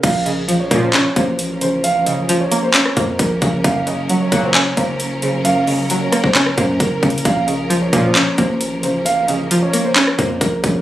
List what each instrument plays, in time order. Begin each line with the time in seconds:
0.03 808-style bass A#1, synth pluck A#2, string section F3 A#3 C#4 A#4, grand piano F5, kick, closed hi-hat, crash
0.26 synth pluck C#3, grand piano D#5, closed hi-hat
0.48 synth pluck F3, closed hi-hat
0.60 grand piano C#5
0.71 analog polysynth C#2 A#2 F3, 808-style bass A#2, synth pluck A#3, kick, closed hi-hat
0.83 grand piano C5
0.94 synth pluck C#4, grand piano C#5, clap, closed hi-hat
1.16 808-style bass A1, synth pluck A#3, grand piano C5, kick, closed hi-hat
1.39 closed hi-hat
1.61 synth pluck C#3, grand piano C5, closed hi-hat
1.84 grand piano F5, closed hi-hat
2.06 synth pluck C#3, grand piano D#5, closed hi-hat
2.29 synth pluck F3, closed hi-hat
2.40 grand piano C#5
2.52 synth pluck A#3, closed hi-hat
2.63 grand piano C5
2.74 synth pluck C#4, grand piano C#5, clap, closed hi-hat
2.85 cross-stick
2.96 808-style bass F2, synth pluck A#3, grand piano C5, kick, closed hi-hat
3.19 808-style bass A#1, grand piano A#4, kick, closed hi-hat
3.42 808-style bass A#1, synth pluck C#3, kick, closed hi-hat
3.64 808-style bass F#1, synth pluck F#2, string section F#3, grand piano F5, kick, closed hi-hat
3.87 synth pluck C#3, grand piano D#5, closed hi-hat
4.09 synth pluck F#3, closed hi-hat
4.20 grand piano C#5
4.32 808-style bass F#1, analog polysynth C#2 A#2 F#3, synth pluck A#3, kick, closed hi-hat
4.44 grand piano C5
4.54 synth pluck C#4, grand piano C#5, clap, closed hi-hat
4.77 808-style bass F#1, synth pluck A#3, grand piano C5, kick, closed hi-hat
5.00 closed hi-hat
5.22 synth pluck C#3, grand piano C5, closed hi-hat
5.45 synth pluck F#2, grand piano F5, closed hi-hat
5.67 synth pluck C#3, grand piano D#5, open hi-hat
5.90 synth pluck F#3, closed hi-hat
6.01 grand piano C#5
6.12 synth pluck A#3, cross-stick, closed hi-hat
6.24 808-style bass F#1, grand piano C5, kick
6.35 synth pluck C#4, grand piano C#5, clap, closed hi-hat
6.46 cross-stick
6.57 808-style bass F#2, synth pluck A#3, grand piano C5, kick, closed hi-hat
6.80 808-style bass F#1, grand piano A#4, kick, closed hi-hat
7.02 808-style bass F#1, synth pluck C#3, kick, closed hi-hat
7.10 closed hi-hat
7.18 closed hi-hat
7.25 808-style bass A#1, synth pluck A#2, string section F3 A#3, grand piano F5, kick, closed hi-hat
7.47 synth pluck C#3, grand piano D#5, closed hi-hat
7.70 synth pluck F3, closed hi-hat
7.82 grand piano C#5
7.93 analog polysynth C#2 A#2 F3, 808-style bass A#2, synth pluck A#3, kick, closed hi-hat
8.04 grand piano C5
8.15 synth pluck C#4, grand piano C#5, clap, closed hi-hat
8.38 808-style bass A1, synth pluck A#3, grand piano C5, kick, closed hi-hat
8.61 closed hi-hat
8.83 synth pluck C#3, grand piano C5, closed hi-hat
9.05 grand piano F5, closed hi-hat
9.28 synth pluck C#3, grand piano D#5, closed hi-hat
9.51 synth pluck F3, closed hi-hat
9.62 grand piano C#5
9.73 synth pluck A#3, closed hi-hat
9.84 grand piano C5
9.96 synth pluck C#4, grand piano C#5, clap, closed hi-hat
10.07 cross-stick
10.18 808-style bass F2, synth pluck A#3, grand piano C5, kick, closed hi-hat
10.41 808-style bass A#1, grand piano A#4, kick, closed hi-hat
10.64 808-style bass A#1, synth pluck C#3, kick, closed hi-hat